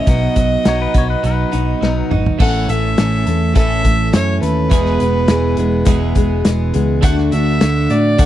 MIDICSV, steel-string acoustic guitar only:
0, 0, Header, 1, 2, 480
1, 0, Start_track
1, 0, Tempo, 579710
1, 64, Time_signature, 4, 2, 24, 8
1, 6837, End_track
2, 0, Start_track
2, 0, Title_t, "Steel-string acoustic guitar"
2, 0, Program_c, 0, 25
2, 64, Note_on_c, 0, 47, 68
2, 67, Note_on_c, 0, 54, 77
2, 69, Note_on_c, 0, 59, 75
2, 75, Note_on_c, 0, 63, 67
2, 76, Note_on_c, 0, 66, 86
2, 282, Note_off_c, 0, 66, 0
2, 292, Note_on_c, 0, 66, 44
2, 295, Note_off_c, 0, 63, 0
2, 299, Note_off_c, 0, 59, 0
2, 304, Note_off_c, 0, 47, 0
2, 305, Note_on_c, 0, 63, 37
2, 306, Note_off_c, 0, 54, 0
2, 309, Note_on_c, 0, 59, 38
2, 537, Note_off_c, 0, 63, 0
2, 538, Note_off_c, 0, 66, 0
2, 539, Note_off_c, 0, 59, 0
2, 543, Note_on_c, 0, 47, 83
2, 546, Note_on_c, 0, 54, 86
2, 547, Note_on_c, 0, 63, 86
2, 549, Note_on_c, 0, 59, 90
2, 553, Note_on_c, 0, 66, 90
2, 770, Note_off_c, 0, 66, 0
2, 779, Note_on_c, 0, 66, 57
2, 781, Note_off_c, 0, 63, 0
2, 784, Note_off_c, 0, 47, 0
2, 785, Note_off_c, 0, 54, 0
2, 787, Note_off_c, 0, 59, 0
2, 791, Note_on_c, 0, 63, 56
2, 802, Note_on_c, 0, 59, 50
2, 1017, Note_off_c, 0, 59, 0
2, 1020, Note_on_c, 0, 54, 60
2, 1022, Note_off_c, 0, 66, 0
2, 1027, Note_on_c, 0, 59, 60
2, 1028, Note_off_c, 0, 63, 0
2, 1037, Note_on_c, 0, 63, 60
2, 1038, Note_on_c, 0, 66, 64
2, 1244, Note_off_c, 0, 66, 0
2, 1254, Note_on_c, 0, 66, 56
2, 1258, Note_off_c, 0, 63, 0
2, 1262, Note_off_c, 0, 54, 0
2, 1266, Note_off_c, 0, 59, 0
2, 1268, Note_on_c, 0, 63, 47
2, 1275, Note_on_c, 0, 59, 47
2, 1500, Note_off_c, 0, 66, 0
2, 1502, Note_off_c, 0, 59, 0
2, 1507, Note_off_c, 0, 63, 0
2, 1509, Note_on_c, 0, 47, 76
2, 1510, Note_on_c, 0, 54, 70
2, 1512, Note_on_c, 0, 59, 76
2, 1515, Note_on_c, 0, 63, 89
2, 1519, Note_on_c, 0, 66, 79
2, 1737, Note_off_c, 0, 66, 0
2, 1747, Note_off_c, 0, 47, 0
2, 1747, Note_off_c, 0, 54, 0
2, 1747, Note_on_c, 0, 66, 55
2, 1748, Note_off_c, 0, 63, 0
2, 1749, Note_off_c, 0, 59, 0
2, 1758, Note_on_c, 0, 63, 46
2, 1769, Note_on_c, 0, 59, 43
2, 1983, Note_on_c, 0, 45, 64
2, 1986, Note_off_c, 0, 66, 0
2, 1987, Note_off_c, 0, 63, 0
2, 1988, Note_off_c, 0, 59, 0
2, 1990, Note_on_c, 0, 52, 71
2, 1991, Note_on_c, 0, 61, 86
2, 1992, Note_on_c, 0, 57, 75
2, 2000, Note_on_c, 0, 69, 84
2, 2210, Note_off_c, 0, 69, 0
2, 2220, Note_on_c, 0, 69, 47
2, 2224, Note_off_c, 0, 45, 0
2, 2224, Note_off_c, 0, 61, 0
2, 2228, Note_off_c, 0, 52, 0
2, 2228, Note_off_c, 0, 57, 0
2, 2233, Note_on_c, 0, 61, 39
2, 2240, Note_on_c, 0, 57, 37
2, 2459, Note_off_c, 0, 57, 0
2, 2462, Note_off_c, 0, 69, 0
2, 2465, Note_off_c, 0, 61, 0
2, 2465, Note_on_c, 0, 52, 56
2, 2469, Note_on_c, 0, 57, 58
2, 2475, Note_on_c, 0, 61, 64
2, 2476, Note_on_c, 0, 69, 59
2, 2690, Note_off_c, 0, 69, 0
2, 2700, Note_on_c, 0, 69, 56
2, 2702, Note_off_c, 0, 61, 0
2, 2705, Note_off_c, 0, 52, 0
2, 2707, Note_off_c, 0, 57, 0
2, 2712, Note_on_c, 0, 61, 44
2, 2719, Note_on_c, 0, 57, 46
2, 2932, Note_off_c, 0, 57, 0
2, 2932, Note_off_c, 0, 61, 0
2, 2935, Note_on_c, 0, 45, 70
2, 2942, Note_on_c, 0, 57, 73
2, 2942, Note_on_c, 0, 61, 79
2, 2943, Note_off_c, 0, 69, 0
2, 2943, Note_on_c, 0, 52, 72
2, 2952, Note_on_c, 0, 69, 80
2, 3161, Note_off_c, 0, 69, 0
2, 3171, Note_on_c, 0, 69, 54
2, 3173, Note_off_c, 0, 61, 0
2, 3180, Note_off_c, 0, 45, 0
2, 3180, Note_off_c, 0, 57, 0
2, 3183, Note_on_c, 0, 61, 47
2, 3184, Note_off_c, 0, 52, 0
2, 3190, Note_on_c, 0, 57, 43
2, 3415, Note_off_c, 0, 57, 0
2, 3418, Note_off_c, 0, 61, 0
2, 3418, Note_off_c, 0, 69, 0
2, 3419, Note_on_c, 0, 52, 50
2, 3425, Note_on_c, 0, 57, 54
2, 3428, Note_on_c, 0, 61, 63
2, 3435, Note_on_c, 0, 69, 54
2, 3649, Note_off_c, 0, 69, 0
2, 3656, Note_off_c, 0, 61, 0
2, 3658, Note_on_c, 0, 69, 47
2, 3662, Note_off_c, 0, 52, 0
2, 3665, Note_off_c, 0, 57, 0
2, 3666, Note_on_c, 0, 61, 46
2, 3676, Note_on_c, 0, 57, 40
2, 3889, Note_on_c, 0, 40, 83
2, 3897, Note_on_c, 0, 47, 72
2, 3898, Note_off_c, 0, 57, 0
2, 3898, Note_on_c, 0, 52, 82
2, 3899, Note_off_c, 0, 61, 0
2, 3901, Note_off_c, 0, 69, 0
2, 3901, Note_on_c, 0, 56, 75
2, 3902, Note_on_c, 0, 59, 86
2, 3905, Note_on_c, 0, 68, 78
2, 4124, Note_off_c, 0, 68, 0
2, 4131, Note_off_c, 0, 59, 0
2, 4134, Note_on_c, 0, 68, 46
2, 4136, Note_off_c, 0, 56, 0
2, 4137, Note_off_c, 0, 40, 0
2, 4141, Note_off_c, 0, 47, 0
2, 4141, Note_off_c, 0, 52, 0
2, 4141, Note_on_c, 0, 59, 44
2, 4146, Note_on_c, 0, 56, 40
2, 4155, Note_on_c, 0, 52, 38
2, 4365, Note_off_c, 0, 52, 0
2, 4374, Note_off_c, 0, 56, 0
2, 4375, Note_on_c, 0, 52, 71
2, 4378, Note_off_c, 0, 59, 0
2, 4379, Note_off_c, 0, 68, 0
2, 4384, Note_on_c, 0, 56, 71
2, 4388, Note_on_c, 0, 59, 62
2, 4397, Note_on_c, 0, 68, 74
2, 4611, Note_off_c, 0, 68, 0
2, 4617, Note_off_c, 0, 59, 0
2, 4620, Note_off_c, 0, 52, 0
2, 4621, Note_on_c, 0, 68, 69
2, 4624, Note_off_c, 0, 56, 0
2, 4627, Note_on_c, 0, 59, 52
2, 4633, Note_on_c, 0, 56, 58
2, 4635, Note_on_c, 0, 52, 50
2, 4841, Note_off_c, 0, 52, 0
2, 4843, Note_off_c, 0, 56, 0
2, 4846, Note_on_c, 0, 40, 83
2, 4847, Note_on_c, 0, 47, 83
2, 4848, Note_off_c, 0, 59, 0
2, 4849, Note_off_c, 0, 68, 0
2, 4851, Note_on_c, 0, 52, 90
2, 4853, Note_on_c, 0, 56, 93
2, 4858, Note_on_c, 0, 59, 100
2, 4859, Note_on_c, 0, 68, 94
2, 5081, Note_off_c, 0, 68, 0
2, 5091, Note_on_c, 0, 68, 62
2, 5093, Note_off_c, 0, 59, 0
2, 5095, Note_off_c, 0, 40, 0
2, 5096, Note_off_c, 0, 47, 0
2, 5096, Note_off_c, 0, 56, 0
2, 5098, Note_off_c, 0, 52, 0
2, 5103, Note_on_c, 0, 59, 57
2, 5105, Note_on_c, 0, 56, 48
2, 5111, Note_on_c, 0, 52, 49
2, 5331, Note_off_c, 0, 52, 0
2, 5338, Note_off_c, 0, 56, 0
2, 5338, Note_off_c, 0, 68, 0
2, 5341, Note_on_c, 0, 52, 64
2, 5343, Note_off_c, 0, 59, 0
2, 5348, Note_on_c, 0, 56, 68
2, 5354, Note_on_c, 0, 59, 61
2, 5357, Note_on_c, 0, 68, 65
2, 5564, Note_off_c, 0, 68, 0
2, 5574, Note_on_c, 0, 68, 55
2, 5577, Note_off_c, 0, 56, 0
2, 5578, Note_off_c, 0, 59, 0
2, 5582, Note_off_c, 0, 52, 0
2, 5587, Note_on_c, 0, 56, 52
2, 5588, Note_on_c, 0, 59, 52
2, 5595, Note_on_c, 0, 52, 51
2, 5810, Note_off_c, 0, 52, 0
2, 5812, Note_off_c, 0, 56, 0
2, 5813, Note_on_c, 0, 50, 75
2, 5816, Note_on_c, 0, 57, 81
2, 5819, Note_off_c, 0, 68, 0
2, 5822, Note_off_c, 0, 59, 0
2, 5825, Note_on_c, 0, 62, 76
2, 5826, Note_on_c, 0, 66, 95
2, 6052, Note_off_c, 0, 66, 0
2, 6058, Note_off_c, 0, 50, 0
2, 6058, Note_off_c, 0, 62, 0
2, 6059, Note_off_c, 0, 57, 0
2, 6062, Note_on_c, 0, 66, 48
2, 6068, Note_on_c, 0, 62, 43
2, 6073, Note_on_c, 0, 57, 39
2, 6291, Note_off_c, 0, 57, 0
2, 6295, Note_off_c, 0, 62, 0
2, 6298, Note_on_c, 0, 50, 65
2, 6301, Note_on_c, 0, 57, 64
2, 6302, Note_off_c, 0, 66, 0
2, 6305, Note_on_c, 0, 62, 60
2, 6312, Note_on_c, 0, 66, 66
2, 6533, Note_off_c, 0, 66, 0
2, 6540, Note_off_c, 0, 50, 0
2, 6542, Note_off_c, 0, 57, 0
2, 6543, Note_on_c, 0, 66, 54
2, 6544, Note_off_c, 0, 62, 0
2, 6552, Note_on_c, 0, 62, 47
2, 6559, Note_on_c, 0, 57, 43
2, 6779, Note_off_c, 0, 57, 0
2, 6782, Note_off_c, 0, 66, 0
2, 6787, Note_off_c, 0, 62, 0
2, 6787, Note_on_c, 0, 50, 71
2, 6789, Note_on_c, 0, 57, 82
2, 6795, Note_on_c, 0, 62, 77
2, 6799, Note_on_c, 0, 66, 80
2, 6837, Note_off_c, 0, 50, 0
2, 6837, Note_off_c, 0, 57, 0
2, 6837, Note_off_c, 0, 62, 0
2, 6837, Note_off_c, 0, 66, 0
2, 6837, End_track
0, 0, End_of_file